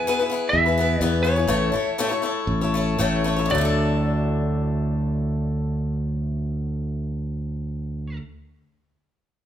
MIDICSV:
0, 0, Header, 1, 4, 480
1, 0, Start_track
1, 0, Tempo, 470219
1, 1519, Time_signature, 4, 2, 24, 8
1, 1519, Tempo, 500835
1, 2959, Tempo, 538600
1, 8720, End_track
2, 0, Start_track
2, 0, Title_t, "Lead electric guitar"
2, 0, Program_c, 0, 29
2, 0, Note_on_c, 0, 80, 106
2, 502, Note_on_c, 0, 76, 99
2, 561, Note_off_c, 0, 80, 0
2, 1033, Note_off_c, 0, 76, 0
2, 1033, Note_on_c, 0, 74, 99
2, 1209, Note_off_c, 0, 74, 0
2, 1252, Note_on_c, 0, 73, 86
2, 3148, Note_off_c, 0, 73, 0
2, 3421, Note_on_c, 0, 74, 88
2, 7575, Note_off_c, 0, 74, 0
2, 8720, End_track
3, 0, Start_track
3, 0, Title_t, "Steel-string acoustic guitar"
3, 0, Program_c, 1, 25
3, 73, Note_on_c, 1, 52, 92
3, 79, Note_on_c, 1, 59, 85
3, 83, Note_on_c, 1, 64, 94
3, 93, Note_on_c, 1, 68, 88
3, 94, Note_on_c, 1, 71, 92
3, 186, Note_off_c, 1, 71, 0
3, 193, Note_off_c, 1, 52, 0
3, 196, Note_off_c, 1, 59, 0
3, 198, Note_off_c, 1, 64, 0
3, 198, Note_on_c, 1, 71, 71
3, 199, Note_off_c, 1, 68, 0
3, 211, Note_on_c, 1, 68, 58
3, 225, Note_on_c, 1, 64, 52
3, 302, Note_on_c, 1, 59, 67
3, 308, Note_off_c, 1, 64, 0
3, 315, Note_off_c, 1, 71, 0
3, 319, Note_off_c, 1, 68, 0
3, 320, Note_on_c, 1, 64, 84
3, 332, Note_on_c, 1, 68, 76
3, 346, Note_on_c, 1, 71, 82
3, 659, Note_off_c, 1, 71, 0
3, 665, Note_off_c, 1, 59, 0
3, 671, Note_on_c, 1, 71, 60
3, 674, Note_off_c, 1, 64, 0
3, 680, Note_off_c, 1, 68, 0
3, 691, Note_on_c, 1, 68, 52
3, 701, Note_on_c, 1, 64, 51
3, 791, Note_off_c, 1, 71, 0
3, 792, Note_on_c, 1, 59, 76
3, 793, Note_off_c, 1, 64, 0
3, 801, Note_off_c, 1, 68, 0
3, 805, Note_on_c, 1, 64, 71
3, 821, Note_on_c, 1, 68, 71
3, 826, Note_on_c, 1, 71, 72
3, 1024, Note_off_c, 1, 59, 0
3, 1032, Note_on_c, 1, 52, 84
3, 1033, Note_off_c, 1, 64, 0
3, 1035, Note_off_c, 1, 68, 0
3, 1037, Note_on_c, 1, 59, 82
3, 1045, Note_on_c, 1, 64, 84
3, 1046, Note_off_c, 1, 71, 0
3, 1047, Note_on_c, 1, 68, 92
3, 1058, Note_on_c, 1, 71, 102
3, 1251, Note_off_c, 1, 59, 0
3, 1259, Note_off_c, 1, 64, 0
3, 1263, Note_on_c, 1, 59, 61
3, 1271, Note_on_c, 1, 64, 73
3, 1273, Note_off_c, 1, 68, 0
3, 1274, Note_off_c, 1, 52, 0
3, 1279, Note_off_c, 1, 71, 0
3, 1286, Note_on_c, 1, 68, 71
3, 1291, Note_on_c, 1, 71, 69
3, 1376, Note_off_c, 1, 71, 0
3, 1389, Note_off_c, 1, 68, 0
3, 1389, Note_on_c, 1, 71, 59
3, 1391, Note_off_c, 1, 59, 0
3, 1395, Note_off_c, 1, 64, 0
3, 1401, Note_on_c, 1, 68, 52
3, 1421, Note_on_c, 1, 64, 53
3, 1506, Note_on_c, 1, 45, 81
3, 1509, Note_off_c, 1, 64, 0
3, 1515, Note_off_c, 1, 71, 0
3, 1515, Note_on_c, 1, 52, 85
3, 1515, Note_on_c, 1, 57, 96
3, 1521, Note_off_c, 1, 68, 0
3, 1521, Note_on_c, 1, 64, 100
3, 1529, Note_on_c, 1, 69, 93
3, 1529, Note_on_c, 1, 73, 102
3, 1729, Note_off_c, 1, 57, 0
3, 1740, Note_on_c, 1, 57, 68
3, 1743, Note_off_c, 1, 64, 0
3, 1746, Note_off_c, 1, 45, 0
3, 1749, Note_off_c, 1, 69, 0
3, 1750, Note_off_c, 1, 52, 0
3, 1754, Note_on_c, 1, 64, 63
3, 1757, Note_off_c, 1, 73, 0
3, 1760, Note_on_c, 1, 69, 70
3, 1774, Note_on_c, 1, 73, 75
3, 1981, Note_off_c, 1, 57, 0
3, 1988, Note_off_c, 1, 64, 0
3, 1991, Note_off_c, 1, 69, 0
3, 1993, Note_on_c, 1, 45, 90
3, 1997, Note_on_c, 1, 52, 98
3, 1998, Note_off_c, 1, 73, 0
3, 2001, Note_on_c, 1, 57, 104
3, 2012, Note_on_c, 1, 64, 101
3, 2012, Note_on_c, 1, 69, 101
3, 2012, Note_on_c, 1, 73, 94
3, 2083, Note_off_c, 1, 73, 0
3, 2095, Note_on_c, 1, 73, 64
3, 2096, Note_off_c, 1, 69, 0
3, 2105, Note_off_c, 1, 64, 0
3, 2108, Note_off_c, 1, 45, 0
3, 2108, Note_on_c, 1, 69, 61
3, 2110, Note_off_c, 1, 52, 0
3, 2113, Note_off_c, 1, 57, 0
3, 2116, Note_on_c, 1, 64, 53
3, 2130, Note_on_c, 1, 57, 51
3, 2210, Note_off_c, 1, 57, 0
3, 2220, Note_off_c, 1, 64, 0
3, 2220, Note_off_c, 1, 73, 0
3, 2221, Note_on_c, 1, 57, 75
3, 2226, Note_off_c, 1, 69, 0
3, 2232, Note_on_c, 1, 64, 81
3, 2243, Note_on_c, 1, 69, 76
3, 2255, Note_on_c, 1, 73, 76
3, 2586, Note_off_c, 1, 57, 0
3, 2586, Note_off_c, 1, 73, 0
3, 2591, Note_off_c, 1, 64, 0
3, 2593, Note_off_c, 1, 69, 0
3, 2598, Note_on_c, 1, 73, 61
3, 2605, Note_on_c, 1, 69, 58
3, 2617, Note_on_c, 1, 64, 60
3, 2627, Note_on_c, 1, 57, 51
3, 2706, Note_off_c, 1, 57, 0
3, 2715, Note_off_c, 1, 73, 0
3, 2718, Note_on_c, 1, 57, 71
3, 2719, Note_off_c, 1, 64, 0
3, 2719, Note_off_c, 1, 69, 0
3, 2731, Note_on_c, 1, 64, 73
3, 2746, Note_on_c, 1, 69, 76
3, 2748, Note_on_c, 1, 73, 76
3, 2954, Note_on_c, 1, 45, 90
3, 2955, Note_off_c, 1, 57, 0
3, 2960, Note_off_c, 1, 64, 0
3, 2962, Note_on_c, 1, 52, 99
3, 2964, Note_off_c, 1, 69, 0
3, 2966, Note_off_c, 1, 73, 0
3, 2966, Note_on_c, 1, 57, 98
3, 2971, Note_on_c, 1, 64, 92
3, 2975, Note_on_c, 1, 69, 93
3, 2977, Note_on_c, 1, 73, 102
3, 3173, Note_off_c, 1, 57, 0
3, 3184, Note_off_c, 1, 64, 0
3, 3184, Note_on_c, 1, 57, 73
3, 3191, Note_off_c, 1, 45, 0
3, 3194, Note_off_c, 1, 69, 0
3, 3195, Note_off_c, 1, 52, 0
3, 3195, Note_on_c, 1, 64, 73
3, 3202, Note_off_c, 1, 73, 0
3, 3205, Note_on_c, 1, 69, 73
3, 3215, Note_on_c, 1, 73, 75
3, 3281, Note_off_c, 1, 73, 0
3, 3292, Note_on_c, 1, 73, 62
3, 3298, Note_off_c, 1, 69, 0
3, 3304, Note_off_c, 1, 64, 0
3, 3307, Note_off_c, 1, 57, 0
3, 3309, Note_on_c, 1, 69, 59
3, 3315, Note_on_c, 1, 64, 58
3, 3326, Note_on_c, 1, 57, 57
3, 3373, Note_on_c, 1, 50, 91
3, 3412, Note_on_c, 1, 54, 91
3, 3421, Note_off_c, 1, 73, 0
3, 3430, Note_off_c, 1, 69, 0
3, 3433, Note_off_c, 1, 64, 0
3, 3438, Note_off_c, 1, 57, 0
3, 3455, Note_on_c, 1, 57, 94
3, 3485, Note_on_c, 1, 62, 92
3, 3513, Note_on_c, 1, 64, 98
3, 3546, Note_on_c, 1, 69, 93
3, 7563, Note_off_c, 1, 50, 0
3, 7602, Note_off_c, 1, 54, 0
3, 7645, Note_off_c, 1, 57, 0
3, 7675, Note_off_c, 1, 62, 0
3, 7703, Note_off_c, 1, 64, 0
3, 7736, Note_off_c, 1, 69, 0
3, 8720, End_track
4, 0, Start_track
4, 0, Title_t, "Fingered electric bass"
4, 0, Program_c, 2, 33
4, 543, Note_on_c, 2, 40, 101
4, 986, Note_off_c, 2, 40, 0
4, 1028, Note_on_c, 2, 40, 99
4, 1477, Note_off_c, 2, 40, 0
4, 1505, Note_on_c, 2, 33, 106
4, 1724, Note_off_c, 2, 33, 0
4, 2462, Note_on_c, 2, 33, 97
4, 2918, Note_off_c, 2, 33, 0
4, 2960, Note_on_c, 2, 33, 102
4, 3397, Note_off_c, 2, 33, 0
4, 3432, Note_on_c, 2, 38, 99
4, 7586, Note_off_c, 2, 38, 0
4, 8720, End_track
0, 0, End_of_file